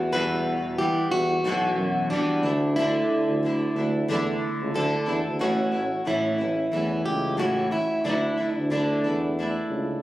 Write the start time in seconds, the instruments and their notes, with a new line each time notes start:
Already playing: tuba E2, nylon-string guitar E3 G3 B3 F#4, steel-string acoustic guitar F#4
0.12 nylon-string guitar E2 B2 E3 G3 B3 F#4, steel-string acoustic guitar B4
0.78 tuba E3, nylon-string guitar E3 G3 B3, steel-string acoustic guitar G4
1.10 tuba E2, steel-string acoustic guitar F#4
1.43 tuba B1, nylon-string guitar E2 B2 E3 B3 F#4
1.76 tuba F#2
2.10 nylon-string guitar E3 G3 B3 F#4, steel-string acoustic guitar D4
2.43 tuba D2, nylon-string guitar D4 E4
2.47 nylon-string guitar A3
2.76 nylon-string guitar D3 A3 D4 E4, steel-string acoustic guitar E4
3.29 tuba D2
3.43 nylon-string guitar D3 A3 D4 E4
3.75 tuba D2, nylon-string guitar D4 E4
3.80 nylon-string guitar A3
4.08 tuba E2, nylon-string guitar D3 A3 D4 E4
4.41 tuba C#2
4.61 tuba C#2
4.74 tuba D2, nylon-string guitar D3 A3 D4 E4, steel-string acoustic guitar A4
5.06 tuba E2, nylon-string guitar A3 D4 E4
5.27 tuba D2
5.39 tuba A1, nylon-string guitar A2 E3 A3 C#4 E4, steel-string acoustic guitar F#4
5.72 nylon-string guitar A3 C#4 E4
6.05 nylon-string guitar A2 E3 A3 C#4 E4, tuba A2, steel-string acoustic guitar E4
6.38 tuba A1, nylon-string guitar A3 C#4 E4
6.72 tuba E2, nylon-string guitar E3 A3 C#4 E4, steel-string acoustic guitar E4
7.05 tuba C#2, steel-string acoustic guitar G4
7.37 nylon-string guitar A2 E3 A3 C#4 E4, steel-string acoustic guitar F#4
7.71 nylon-string guitar A3 C#4 E4, steel-string acoustic guitar E4
8.04 tuba D2, nylon-string guitar D3 A3 D4 E4, steel-string acoustic guitar E4
8.37 nylon-string guitar A3 D4 E4
8.56 tuba D2, steel-string acoustic guitar D4
8.70 nylon-string guitar D3 A3 D4 E4, steel-string acoustic guitar D4
9.03 tuba E2, nylon-string guitar A3 D4 E4
9.39 nylon-string guitar A3 D4 E4
9.69 tuba C#2